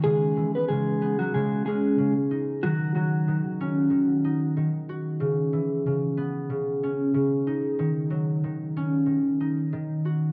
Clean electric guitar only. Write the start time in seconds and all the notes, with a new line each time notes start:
0.04 G#3 G#4
0.55 B3 B4
0.68 G#3 G#4
1.19 F#3 F#4
1.34 G#3 G#4
1.66 G#3 G#4
2.63 F#3 F#4
2.96 F#3 F#4